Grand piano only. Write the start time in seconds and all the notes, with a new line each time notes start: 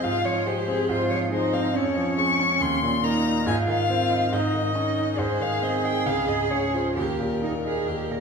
0.04 G#2
0.25 F3
0.46 G#3
0.67 C4
0.89 G#2
1.11 F3
1.32 G#3
1.53 C4
1.76 F2
1.97 F3
2.17 G#3
2.40 C#4
2.61 D#2
2.83 A#2
3.04 A#3
3.25 D#4
3.46 G#2
3.68 D#3
3.90 C4
4.10 D#4
4.32 G#2
4.54 D#3
4.75 C#4
4.97 D#4
5.18 G#2
5.40 D#3
5.62 C4
5.83 D#4
6.06 C#2
6.28 G#2
6.51 C#4
6.74 F4
6.97 D#2
7.19 A#2
7.43 A#3
7.65 D#4
7.88 D#2
8.10 A#2